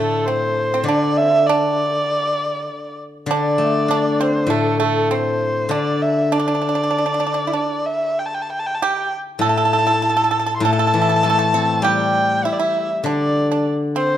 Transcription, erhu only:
Already playing: A4
0.26 C5
0.85 D5
1.17 E5
1.47 D5
3.31 D5
4.20 C5
4.50 A4
4.80 A4
5.12 C5
5.71 D5
6.02 E5
6.32 D5
7.86 E5
8.19 G5
8.26 A5
8.34 G5
8.42 A5
8.50 G5
8.59 A5
8.67 G5
8.75 A5
8.84 G5
9.42 A5
10.56 C6
10.62 A5
11.83 G5
12.45 E5
12.53 D5
12.59 E5
13.07 D5
13.97 C5

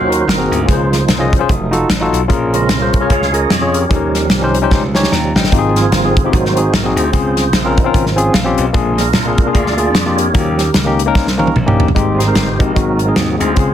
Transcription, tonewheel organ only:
Already playing: F#3 C#4 F4 F#4 C5
0.27 A#3 C4 D#4 F#4 A#4
0.52 A#3 F4 G#4
0.68 F3 D#4 C5
1.48 F#3 A3 D#4
2.53 C#3 G#3 C4 C#4 F4 A#4
3.11 G#4 C#5 F5
3.34 G#4 D#5
3.74 G4 A#4 C#5
3.89 F3 G3 C#4
5.53 F3 A#3 C4
5.77 C4 F4 G#4
6.32 F#3 A#3 C4 D#4 F#4 C5
6.76 A#4
6.99 F4 G#4 C5
7.79 D#3 F3 C4
8.73 D3 G#3 C4
8.98 D4 F4 A#4
9.53 G#4 D5 F5
9.75 F4 G#4 D5
10.16 G4 A#4 C#5
10.35 F3 G3 C#4
11.39 F3 G3 C#4
11.95 G3 A#3 C4
12.19 D#4 G4 C5
12.59 D#4 F#4 A#4
12.76 F#3 A#3 C4
13.17 G#4
13.42 F4 G#4 C5

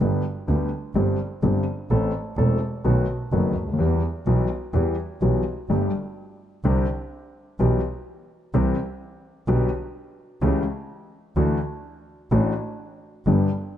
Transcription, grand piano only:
0.01 G1 G2 D3 G3 B3 G4
0.48 D2 D3 G3 B3 G4
0.95 G1 G2 D3 G3 C4 G4
1.43 G1 G2 D3 G3 C4 G4
1.90 A1 A2 E3 A3 C4 A4
2.38 E1 E2 E3 A3 C4 A4
2.84 B1 B2 D#3 A3 B3 F#4
3.32 F#1 F#2 D#3 A3 B3 F#4
3.62 C#2
3.68 D2
3.73 D#2
3.78 E2 E3 G3 B3 G4
4.27 B1 B2 E3 G3 B3 G4
4.73 E2 E3 G3 B3 G4
5.22 B1 B2 E3 G3 B3 G4
5.69 G1 G2 D3 G3 A3 G4
6.64 C2 C3 D3 G3 C4 G4
7.59 B1 B2 E3 G3 B3 G4
8.54 C2 C3 E3 G3 C4 G4
9.48 B1 B2 D3 G3 B3 G4
10.42 C#2 C#3 E3 A3 C#4 G4
11.36 D2 D3 E3 A3 D4 F#4
12.31 A1 A2 E3 A3 D4 F#4
13.26 G1 G2 D3 G3 B3 G4

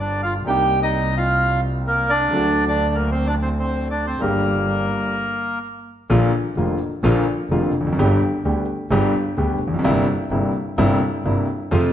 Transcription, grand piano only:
Already playing: G1 G2 D3 G3 A#3 G4
0.45 C2 C3 G3 A#3
0.49 D#4
2.31 D2 D3 F#3 A3 F#4
4.19 G1 G2 D3 G3 A#3
4.23 G4
6.10 A#1 A#2 D3 F3 A#3 F4
6.57 F1 F2 D3 F3 A#3 F4
7.03 A#1 A#2 D3 F3 A#3 F4
7.51 F1 F2 D3 F3 A#3 F4
7.81 E2
7.87 F2
7.93 F#2
7.99 G1 G2 D3 G3 B3 G4
8.45 D2 D3 G3 B3 G4
8.91 G1 G2 D3 G3 B3 G4
9.37 D2 D3 G3 B3 G4
9.68 E2
9.74 F2
9.79 F#2
9.84 G1 G2 C3 G3 A#3 E4
10.31 G1 G2 C3 G3 A#3 E4
10.78 G1 G2 C3 G3 A#3 E4
11.25 G1 G2 C3 G3 A#3 E4
11.71 F2 C3 F3 A3 F4

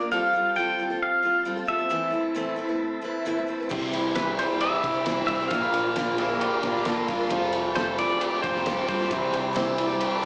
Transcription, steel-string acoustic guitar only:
0.00 A#3 D4 F4 A#4
0.11 F3 G3 C4 F4 A4
0.33 G3 C4 F4 A4
0.56 F3 G3 C4 F4 A4
0.79 G3 C4 F4 A4
0.90 C4 F4 A4
1.23 G3 C4 F4 A4
1.45 F3 G3 C4 F4 A4
1.56 C4 F4 A4
1.65 G3 C4 F4 A4
1.78 C4 F4 A4
1.89 A2 E3 A3 C4 E4 B4
2.10 A3 C4 E4 B4
2.35 A2 E3 A3 C4 E4 B4
2.56 A3 C4 E4 B4
2.68 A3 C4 E4 B4
3.01 A3 C4 E4 B4
3.25 A2 E3 A3 C4 E4 B4
3.35 A3 C4 E4 B4
3.47 A3 C4 E4 B4
3.60 A3 C4 E4 B4
3.69 C3 E3 G3 C4 E4 C5
3.93 G3 C4 E4 C5
4.16 C3 E3 G3 C4 E4 C5
4.37 G3 C4 E4 C5
4.49 G3 C4 E4 C5
4.83 G3 C4 E4 C5
5.05 C3 E3 G3 C4 E4 C5
5.15 C4 E4 C5
5.19 G3
5.28 G3 C4 E4 C5
5.41 G3 C4 E4 C5
5.51 A#2 F3 A#3 D4 F4 A#4
5.73 A#3 D4 F4 A#4
5.96 A#2 F3 A#3 D4 F4 A#4
6.17 A#3 D4 F4 A#4
6.29 A#3 D4 F4 A#4
6.62 A#3 D4 F4 A#4
6.85 A#2 F3 A#3 D4 F4 A#4
6.96 A#3 D4 F4 A#4
7.07 A#3 D4 F4 A#4
7.18 A#3 D4 F4 A#4
7.29 F3 G3 C4 F4 A4
7.52 G3 C4 F4 A4
7.75 F3 G3 C4 F4 A4
7.96 G3 C4 F4 A4
8.09 C4 F4 A4
8.43 G3 C4 F4 A4
8.66 F3 G3 C4 F4 A4
8.77 C4 F4 A4
8.87 G3 C4 F4 A4
8.98 C4 F4 A4
9.10 C3 E3 G3 C4 E4 C5
9.32 G3 C4 E4 C5
9.53 C3 E3 G3 C4 E4 C5
9.76 G3 C4 E4 C5
9.87 G3 C4 E4 C5
10.21 G3

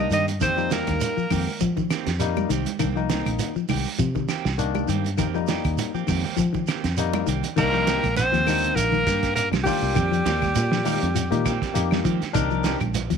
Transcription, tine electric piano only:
Already playing: D4
0.41 A#3 D#4
0.57 G3 A#3 D#4
2.20 G3 A#3 D#4
2.79 A#3 D4
2.95 D#3 A#3 D#4
4.58 D#3 A#3 D4
5.17 A#3 D#4
5.34 G3 A#3 D#4
6.97 G3 A#3 D#4
7.57 A#3 D4 D#4
8.47 A#3 D4 D#4
9.51 D4 F4
9.65 A#3 D4 F4
10.85 A#3 D#4 G4
11.30 A#3 D#4 G4
11.74 A#3 D#4 G4
12.33 D4 D#4 A#4

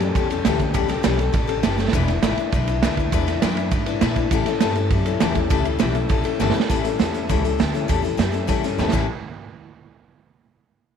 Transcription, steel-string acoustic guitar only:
0.01 G3 C#4 G4 A4
0.16 G3 C#4 G4 A4
0.30 G3 C#4 G4 A4
0.46 A2 E3 G3 C#4 G4 A4
0.59 G3 C#4 G4 A4
0.74 A2 E3 G3 C#4 G4 A4
0.89 G3 C#4 G4 A4
1.03 A2 E3 G3 C#4 G4 A4
1.19 G3 C#4 G4 A4
1.33 G3 C#4 G4 A4
1.48 G3 C#4 G4 A4
1.63 A2 E3 G3 C#4 G4 A4
1.78 G3 C#4 G4 A4
1.93 E3 G#3 D4 E4 B4
2.08 D4 E4 B4
2.23 E3 G#3 D4 E4 B4
2.38 D4 E4 B4
2.52 G#3 D4 E4 B4
2.68 D4 E4 B4
2.83 E3 G#3 D4 E4 B4
2.98 D4 E4 B4
3.12 E3 G#3 D4 E4 B4
3.27 D4 E4 B4
3.42 E3 G#3 D4 E4 B4
3.57 D4 E4 B4
3.71 G#3 D4 E4 B4
3.86 D4 E4 B4
4.01 E3 G#3 D4 E4 B4
4.16 D4 E4 B4
4.31 A2 E3 G3 C#4 E4 A4
4.46 G3 C#4 E4 A4
4.61 A2 E3 G3 C#4 E4 A4
4.76 G3 C#4 E4 A4
4.91 G3 C#4 E4 A4
5.06 G3 C#4 E4 A4
5.20 A2 E3 G3 C#4 E4 A4
5.35 G3 C#4 E4 A4
5.50 A2 E3 G3 C#4 E4 A4
5.64 G3 C#4 E4 A4
5.79 A2 E3 G3 C#4 E4 A4
5.95 G3 C#4 E4 A4
6.09 G3 C#4 E4 A4
6.24 G3 C#4 E4 A4
6.40 A2 E3 G3 C#4 E4 A4
6.54 G3 C#4 E4 A4
6.70 A2 E3 G3 C#4 E4 A4
6.85 G3 C#4 E4 A4
6.99 G3 C#4 E4 A4
7.14 G3 C#4 E4 A4
7.29 A2 E3 G3 C#4 E4 A4
7.44 G3 C#4 E4 A4
7.59 G3 C#4 E4 A4
7.74 G3 C#4 E4 A4
7.88 A2 E3 G3 C#4 E4 A4
8.02 G3 C#4 E4 A4
8.17 G3 C#4 E4 A4
8.32 G3 C#4 E4 A4
8.47 A2 E3 G3 C#4 E4 A4
8.63 G3 C#4 E4 A4
8.78 G3 C#4 E4 A4
8.92 A2 E3 G3 C#4 E4 A4

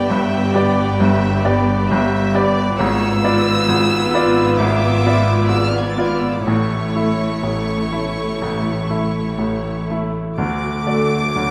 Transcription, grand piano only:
Already playing: G1 G2 B3 G4 D5
0.10 G1 G2
0.54 B3 G4 D5
1.00 G1 G2
1.45 B3 G4 D5
1.91 G1 G2
2.34 B3 G4 D5
2.79 G#1 G#2
3.24 B3 F4 D5
3.68 G#1 G#2
4.14 B3 F4 D5
4.59 G#1 G#2
5.06 B3 F4 D5
5.49 G#1 G#2
5.98 B3 F4 D5
6.47 A1 A2
6.95 A3 E4 E5
7.43 A1 A2
7.92 A3 E4 E5
8.42 A1 A2
8.89 A3 E4 E5
9.38 A1 A2
9.90 A3 E4 E5
10.38 D2 D3
10.87 A3 F#4 D5
11.35 D2 D3

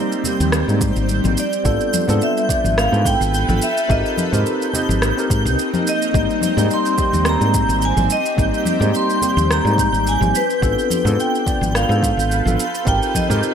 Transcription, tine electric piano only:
Already playing: G3 A#3 C4 D#4
0.25 G3 A#3 C4 G4
0.68 G3 A#3 C4 D#4
1.24 G3 A#3 C4 D#4
1.64 B3 D4 F4 A4
2.07 B3 D4 F4 A4
2.49 B3 D4 F4 D5
2.92 B3 D4 F4 A4
3.47 B3 D4 F4 A4
3.88 C4 D#4 G4 A#4
4.32 C4 D#4 G4 A#4
4.73 C4 D#4 G4 D#5
5.17 C4 D#4 G4 A#4
5.73 C4 D#4 G4 A#4
6.13 G3 A#3 C4 D#4
6.57 G3 A#3 C4 D#4
6.97 G3 A#3 C4 G4
7.41 G3 A#3 C4 D#4
7.97 G3 A#3 C4 D#4
8.37 G3 A#3 C4 D#4
8.80 G3 A#3 C4 D#4
9.21 G3 A#3 C4 G4
9.64 G3 A#3 C4 D#4
10.20 G3 A#3 C4 D#4
10.61 B3 D4 F4 A4
11.04 B3 D4 F4 A4
11.46 B3 D4 F4 D5
11.89 B3 D4 F4 A4
12.45 B3 D4 F4 A4
12.85 C4 D#4 G4 A#4
13.28 C4 D#4 G4 A#4

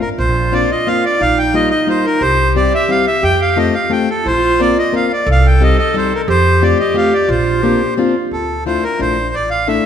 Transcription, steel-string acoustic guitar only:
0.52 A#3 C4 D4 F4
0.87 A#3 C4 D4 F4
1.54 G3 A#3 D#4 F4
1.87 G3 A#3 D#4 F4
2.56 G3 C4 E4 G4
2.88 G3 C4 E4 G4
3.56 A3 C4 F4 A4
3.90 A3 C4 F4 A4
4.59 A#3 C4 F4 A#4
4.92 A#3 C4 F4 A#4
5.60 G3 C4 D#4 G4
5.94 G3 C4 D#4 G4
6.61 A3 C4 F4 G4
6.94 A3 C4 F4 G4
7.63 A#3 C4 D4 F4
7.97 A#3 C4 D4 F4
8.66 A3 D4 E4 F4
8.99 A3 D4 E4 F4
9.68 A3 D4 E4 A4

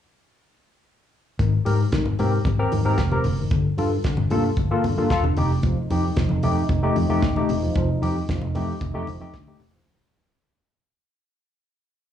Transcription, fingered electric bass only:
1.39 G#1
1.66 G#2
1.93 G#1
2.05 G#1
2.19 G#2
2.45 G#1
2.72 G#2
2.85 G#2
2.98 F1
3.25 F#1
3.51 G1
3.78 G2
4.05 G1
4.17 G1
4.31 G2
4.57 G1
4.84 G2
4.98 G2
5.10 E1
5.37 F1
5.91 F2
6.17 F1
6.31 F1
6.43 F2
6.69 F1
6.97 F2
7.09 F2
7.22 D#1
7.49 E1
7.76 F1
8.02 F2
8.29 F1
8.42 F1
8.55 F2
8.81 F1
8.94 F2
9.07 F1
9.20 F2
9.34 D2
9.60 E1

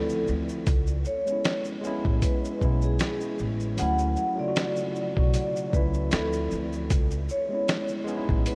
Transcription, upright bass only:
Already playing: D2
0.29 D2
0.67 C#2
2.05 A1
2.62 B1
3.40 A1
3.79 D2
5.17 B1
5.74 C#2
6.13 D2
6.52 D2
6.91 C#2
8.30 A1

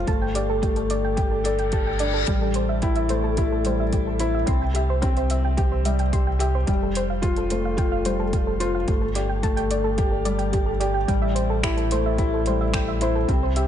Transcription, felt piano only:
Already playing: F4
0.07 A3
0.35 G4
0.62 A3
1.17 G4
1.44 A4
1.72 G4
2.00 D4
2.27 G3
2.83 E4
3.09 A3
3.38 E4
3.65 G3
4.20 E4
4.46 C4
4.74 G4
5.02 C4
5.57 G4
5.85 G3
6.13 G4
6.39 G4
6.67 G3
7.22 F4
7.51 A3
7.77 F4
8.06 G3
8.60 F4
8.88 A3
9.15 G4
9.43 A3
9.98 G4
10.26 G3
10.54 G4
10.81 G4
11.08 G3
11.64 E4
11.92 A3
12.19 E4
12.47 G3
13.01 E4
13.29 C4
13.56 G4

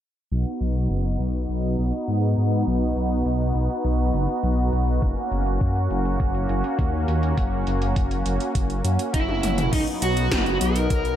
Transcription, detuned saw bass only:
0.32 B1
0.61 B1
0.90 F#1
1.20 B1
1.49 B1
1.79 B1
2.08 G#2
2.38 G#2
2.67 B1
2.96 B1
3.26 B1
3.55 B1
3.85 B1
4.14 F#1
4.43 B1
4.73 B1
5.02 F#1
5.31 F#1
5.61 F#2
5.90 F#1
6.20 F#1
6.49 F#1
6.79 D#2
7.08 D#2
7.37 F#1
7.67 F#1
7.96 F#1
8.26 F#1
8.55 F#1
8.84 F#2
9.14 F#1
9.43 F#1
9.73 B1
10.02 B1
10.32 F#1
10.61 B1
10.90 B1

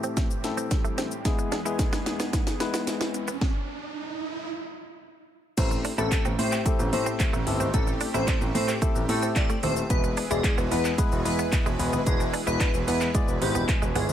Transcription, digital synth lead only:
5.57 C5
5.98 A4
6.39 C5
6.93 C5
7.74 A4
8.14 C5
8.55 C5
9.09 A4
9.36 D5
9.63 C5
9.90 B4
10.30 G#4
10.71 B4
11.25 B4
12.06 G#4
12.47 B4
12.87 B4
13.42 G4
13.96 G#4

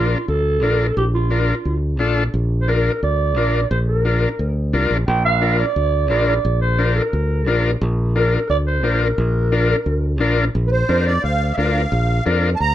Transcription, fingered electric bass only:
Already playing: A#1
0.28 D2
0.62 A#1
0.97 A#1
1.65 D2
2.00 A#1
2.34 A#1
3.03 D2
3.37 A#1
3.71 A#1
4.39 D2
4.73 C2
4.91 A#1
5.08 A#1
5.76 D2
6.10 A#1
6.45 A#1
7.13 D2
7.47 A#1
7.81 A#1
8.49 D2
8.83 A#1
9.18 A#1
9.86 D2
10.20 A#1
10.55 A#1
10.89 F2
11.24 D2
11.58 D2
11.92 A#1
12.26 F2
12.60 D2

